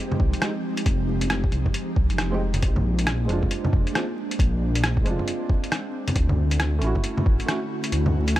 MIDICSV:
0, 0, Header, 1, 5, 480
1, 0, Start_track
1, 0, Tempo, 441176
1, 936, Time_signature, 4, 2, 24, 8
1, 9138, End_track
2, 0, Start_track
2, 0, Title_t, "Felt piano"
2, 0, Program_c, 0, 0
2, 0, Note_on_c, 0, 56, 91
2, 0, Note_on_c, 0, 60, 78
2, 0, Note_on_c, 0, 63, 77
2, 0, Note_on_c, 0, 67, 98
2, 413, Note_off_c, 0, 56, 0
2, 428, Note_off_c, 0, 60, 0
2, 431, Note_on_c, 0, 56, 72
2, 442, Note_off_c, 0, 63, 0
2, 448, Note_on_c, 0, 60, 66
2, 457, Note_off_c, 0, 67, 0
2, 460, Note_on_c, 0, 63, 69
2, 475, Note_on_c, 0, 67, 80
2, 528, Note_off_c, 0, 56, 0
2, 537, Note_off_c, 0, 60, 0
2, 543, Note_off_c, 0, 63, 0
2, 550, Note_off_c, 0, 67, 0
2, 2507, Note_on_c, 0, 56, 93
2, 2521, Note_on_c, 0, 60, 89
2, 2534, Note_on_c, 0, 63, 84
2, 2549, Note_on_c, 0, 67, 101
2, 2585, Note_off_c, 0, 56, 0
2, 2592, Note_off_c, 0, 60, 0
2, 2599, Note_off_c, 0, 63, 0
2, 2606, Note_off_c, 0, 67, 0
2, 3533, Note_on_c, 0, 56, 84
2, 3562, Note_on_c, 0, 60, 77
2, 3591, Note_on_c, 0, 62, 77
2, 3619, Note_on_c, 0, 65, 97
2, 4252, Note_off_c, 0, 56, 0
2, 4267, Note_off_c, 0, 60, 0
2, 4280, Note_on_c, 0, 56, 73
2, 4282, Note_off_c, 0, 62, 0
2, 4293, Note_on_c, 0, 60, 64
2, 4295, Note_off_c, 0, 65, 0
2, 4312, Note_on_c, 0, 62, 65
2, 4324, Note_on_c, 0, 65, 84
2, 4373, Note_off_c, 0, 56, 0
2, 4380, Note_off_c, 0, 60, 0
2, 4389, Note_off_c, 0, 62, 0
2, 4395, Note_off_c, 0, 65, 0
2, 5458, Note_on_c, 0, 56, 85
2, 5488, Note_on_c, 0, 60, 81
2, 5516, Note_on_c, 0, 62, 80
2, 5547, Note_on_c, 0, 65, 95
2, 6666, Note_off_c, 0, 56, 0
2, 6681, Note_off_c, 0, 60, 0
2, 6695, Note_off_c, 0, 62, 0
2, 6710, Note_off_c, 0, 65, 0
2, 7384, Note_on_c, 0, 57, 87
2, 7411, Note_on_c, 0, 61, 78
2, 7440, Note_on_c, 0, 64, 80
2, 7469, Note_on_c, 0, 66, 98
2, 8098, Note_off_c, 0, 57, 0
2, 8112, Note_off_c, 0, 61, 0
2, 8117, Note_on_c, 0, 57, 73
2, 8126, Note_off_c, 0, 64, 0
2, 8132, Note_on_c, 0, 61, 70
2, 8141, Note_off_c, 0, 66, 0
2, 8145, Note_on_c, 0, 64, 65
2, 8161, Note_on_c, 0, 66, 84
2, 8212, Note_off_c, 0, 57, 0
2, 8219, Note_off_c, 0, 61, 0
2, 8225, Note_off_c, 0, 64, 0
2, 8234, Note_off_c, 0, 66, 0
2, 9138, End_track
3, 0, Start_track
3, 0, Title_t, "Ambient pad"
3, 0, Program_c, 1, 92
3, 0, Note_on_c, 1, 53, 79
3, 0, Note_on_c, 1, 56, 89
3, 0, Note_on_c, 1, 60, 75
3, 0, Note_on_c, 1, 63, 74
3, 0, Note_on_c, 1, 67, 72
3, 2817, Note_off_c, 1, 53, 0
3, 2819, Note_off_c, 1, 67, 0
3, 2820, Note_off_c, 1, 56, 0
3, 2820, Note_off_c, 1, 63, 0
3, 2821, Note_off_c, 1, 60, 0
3, 2853, Note_on_c, 1, 56, 81
3, 2854, Note_on_c, 1, 58, 75
3, 2856, Note_on_c, 1, 62, 93
3, 4756, Note_off_c, 1, 58, 0
3, 4776, Note_on_c, 1, 60, 75
3, 6656, Note_off_c, 1, 56, 0
3, 6657, Note_off_c, 1, 62, 0
3, 6677, Note_off_c, 1, 60, 0
3, 6692, Note_on_c, 1, 61, 73
3, 6693, Note_on_c, 1, 57, 72
3, 6694, Note_on_c, 1, 64, 76
3, 6695, Note_on_c, 1, 66, 85
3, 6697, Note_on_c, 1, 50, 79
3, 9138, Note_off_c, 1, 50, 0
3, 9138, Note_off_c, 1, 57, 0
3, 9138, Note_off_c, 1, 61, 0
3, 9138, Note_off_c, 1, 64, 0
3, 9138, Note_off_c, 1, 66, 0
3, 9138, End_track
4, 0, Start_track
4, 0, Title_t, "Detuned saw bass"
4, 0, Program_c, 2, 39
4, 214, Note_on_c, 2, 36, 106
4, 352, Note_off_c, 2, 36, 0
4, 933, Note_on_c, 2, 29, 98
4, 1643, Note_off_c, 2, 29, 0
4, 1652, Note_on_c, 2, 36, 93
4, 1791, Note_off_c, 2, 36, 0
4, 2137, Note_on_c, 2, 36, 91
4, 2281, Note_on_c, 2, 29, 79
4, 2298, Note_off_c, 2, 36, 0
4, 2843, Note_off_c, 2, 29, 0
4, 2857, Note_on_c, 2, 34, 105
4, 3565, Note_off_c, 2, 34, 0
4, 3574, Note_on_c, 2, 29, 95
4, 3712, Note_off_c, 2, 29, 0
4, 4057, Note_on_c, 2, 29, 98
4, 4193, Note_off_c, 2, 29, 0
4, 4778, Note_on_c, 2, 34, 102
4, 5485, Note_off_c, 2, 34, 0
4, 5496, Note_on_c, 2, 29, 95
4, 5632, Note_off_c, 2, 29, 0
4, 6698, Note_on_c, 2, 38, 104
4, 7405, Note_off_c, 2, 38, 0
4, 7416, Note_on_c, 2, 33, 96
4, 7552, Note_off_c, 2, 33, 0
4, 7897, Note_on_c, 2, 33, 107
4, 8033, Note_off_c, 2, 33, 0
4, 8618, Note_on_c, 2, 38, 107
4, 9138, Note_off_c, 2, 38, 0
4, 9138, End_track
5, 0, Start_track
5, 0, Title_t, "Drums"
5, 125, Note_on_c, 9, 61, 64
5, 216, Note_on_c, 9, 36, 110
5, 234, Note_off_c, 9, 61, 0
5, 324, Note_off_c, 9, 36, 0
5, 364, Note_on_c, 9, 42, 32
5, 453, Note_off_c, 9, 42, 0
5, 453, Note_on_c, 9, 37, 113
5, 453, Note_on_c, 9, 42, 55
5, 562, Note_off_c, 9, 37, 0
5, 562, Note_off_c, 9, 42, 0
5, 842, Note_on_c, 9, 42, 59
5, 935, Note_off_c, 9, 42, 0
5, 935, Note_on_c, 9, 36, 124
5, 935, Note_on_c, 9, 42, 56
5, 1044, Note_off_c, 9, 36, 0
5, 1044, Note_off_c, 9, 42, 0
5, 1320, Note_on_c, 9, 42, 59
5, 1414, Note_off_c, 9, 42, 0
5, 1414, Note_on_c, 9, 37, 110
5, 1414, Note_on_c, 9, 42, 55
5, 1523, Note_off_c, 9, 37, 0
5, 1523, Note_off_c, 9, 42, 0
5, 1565, Note_on_c, 9, 36, 104
5, 1655, Note_on_c, 9, 42, 30
5, 1673, Note_off_c, 9, 36, 0
5, 1763, Note_off_c, 9, 42, 0
5, 1804, Note_on_c, 9, 61, 37
5, 1805, Note_on_c, 9, 36, 65
5, 1895, Note_on_c, 9, 42, 59
5, 1913, Note_off_c, 9, 36, 0
5, 1913, Note_off_c, 9, 61, 0
5, 2004, Note_off_c, 9, 42, 0
5, 2137, Note_on_c, 9, 36, 103
5, 2245, Note_off_c, 9, 36, 0
5, 2284, Note_on_c, 9, 42, 30
5, 2376, Note_off_c, 9, 42, 0
5, 2376, Note_on_c, 9, 37, 108
5, 2376, Note_on_c, 9, 42, 52
5, 2485, Note_off_c, 9, 37, 0
5, 2485, Note_off_c, 9, 42, 0
5, 2762, Note_on_c, 9, 42, 56
5, 2762, Note_on_c, 9, 61, 49
5, 2856, Note_off_c, 9, 42, 0
5, 2856, Note_on_c, 9, 42, 57
5, 2857, Note_on_c, 9, 36, 124
5, 2870, Note_off_c, 9, 61, 0
5, 2964, Note_off_c, 9, 42, 0
5, 2966, Note_off_c, 9, 36, 0
5, 3004, Note_on_c, 9, 61, 60
5, 3113, Note_off_c, 9, 61, 0
5, 3249, Note_on_c, 9, 42, 55
5, 3338, Note_off_c, 9, 42, 0
5, 3338, Note_on_c, 9, 37, 114
5, 3338, Note_on_c, 9, 42, 54
5, 3446, Note_off_c, 9, 37, 0
5, 3446, Note_off_c, 9, 42, 0
5, 3581, Note_on_c, 9, 42, 31
5, 3689, Note_off_c, 9, 42, 0
5, 3726, Note_on_c, 9, 36, 63
5, 3728, Note_on_c, 9, 61, 36
5, 3818, Note_on_c, 9, 42, 57
5, 3835, Note_off_c, 9, 36, 0
5, 3837, Note_off_c, 9, 61, 0
5, 3927, Note_off_c, 9, 42, 0
5, 3966, Note_on_c, 9, 61, 61
5, 4058, Note_on_c, 9, 36, 107
5, 4075, Note_off_c, 9, 61, 0
5, 4167, Note_off_c, 9, 36, 0
5, 4209, Note_on_c, 9, 42, 29
5, 4301, Note_off_c, 9, 42, 0
5, 4301, Note_on_c, 9, 37, 100
5, 4301, Note_on_c, 9, 42, 50
5, 4410, Note_off_c, 9, 37, 0
5, 4410, Note_off_c, 9, 42, 0
5, 4693, Note_on_c, 9, 42, 54
5, 4779, Note_on_c, 9, 36, 112
5, 4784, Note_off_c, 9, 42, 0
5, 4784, Note_on_c, 9, 42, 53
5, 4887, Note_off_c, 9, 36, 0
5, 4893, Note_off_c, 9, 42, 0
5, 5173, Note_on_c, 9, 42, 56
5, 5262, Note_off_c, 9, 42, 0
5, 5262, Note_on_c, 9, 37, 105
5, 5262, Note_on_c, 9, 42, 56
5, 5370, Note_off_c, 9, 37, 0
5, 5370, Note_off_c, 9, 42, 0
5, 5407, Note_on_c, 9, 36, 100
5, 5503, Note_on_c, 9, 42, 30
5, 5516, Note_off_c, 9, 36, 0
5, 5612, Note_off_c, 9, 42, 0
5, 5650, Note_on_c, 9, 61, 39
5, 5741, Note_on_c, 9, 42, 56
5, 5759, Note_off_c, 9, 61, 0
5, 5850, Note_off_c, 9, 42, 0
5, 5980, Note_on_c, 9, 36, 102
5, 6088, Note_off_c, 9, 36, 0
5, 6133, Note_on_c, 9, 42, 28
5, 6222, Note_off_c, 9, 42, 0
5, 6222, Note_on_c, 9, 37, 97
5, 6222, Note_on_c, 9, 42, 53
5, 6331, Note_off_c, 9, 37, 0
5, 6331, Note_off_c, 9, 42, 0
5, 6610, Note_on_c, 9, 42, 55
5, 6610, Note_on_c, 9, 61, 52
5, 6698, Note_off_c, 9, 42, 0
5, 6698, Note_on_c, 9, 42, 57
5, 6700, Note_on_c, 9, 36, 117
5, 6719, Note_off_c, 9, 61, 0
5, 6807, Note_off_c, 9, 42, 0
5, 6809, Note_off_c, 9, 36, 0
5, 6846, Note_on_c, 9, 61, 62
5, 6955, Note_off_c, 9, 61, 0
5, 7086, Note_on_c, 9, 42, 55
5, 7177, Note_off_c, 9, 42, 0
5, 7177, Note_on_c, 9, 37, 102
5, 7177, Note_on_c, 9, 42, 54
5, 7286, Note_off_c, 9, 37, 0
5, 7286, Note_off_c, 9, 42, 0
5, 7416, Note_on_c, 9, 42, 32
5, 7525, Note_off_c, 9, 42, 0
5, 7566, Note_on_c, 9, 61, 39
5, 7569, Note_on_c, 9, 36, 63
5, 7656, Note_on_c, 9, 42, 58
5, 7674, Note_off_c, 9, 61, 0
5, 7678, Note_off_c, 9, 36, 0
5, 7765, Note_off_c, 9, 42, 0
5, 7807, Note_on_c, 9, 61, 69
5, 7900, Note_on_c, 9, 36, 105
5, 7915, Note_off_c, 9, 61, 0
5, 8009, Note_off_c, 9, 36, 0
5, 8049, Note_on_c, 9, 42, 30
5, 8143, Note_off_c, 9, 42, 0
5, 8143, Note_on_c, 9, 37, 101
5, 8143, Note_on_c, 9, 42, 53
5, 8252, Note_off_c, 9, 37, 0
5, 8252, Note_off_c, 9, 42, 0
5, 8527, Note_on_c, 9, 42, 54
5, 8620, Note_off_c, 9, 42, 0
5, 8620, Note_on_c, 9, 42, 60
5, 8729, Note_off_c, 9, 42, 0
5, 8769, Note_on_c, 9, 61, 62
5, 8877, Note_off_c, 9, 61, 0
5, 9006, Note_on_c, 9, 42, 60
5, 9097, Note_off_c, 9, 42, 0
5, 9097, Note_on_c, 9, 37, 101
5, 9097, Note_on_c, 9, 42, 60
5, 9138, Note_off_c, 9, 37, 0
5, 9138, Note_off_c, 9, 42, 0
5, 9138, End_track
0, 0, End_of_file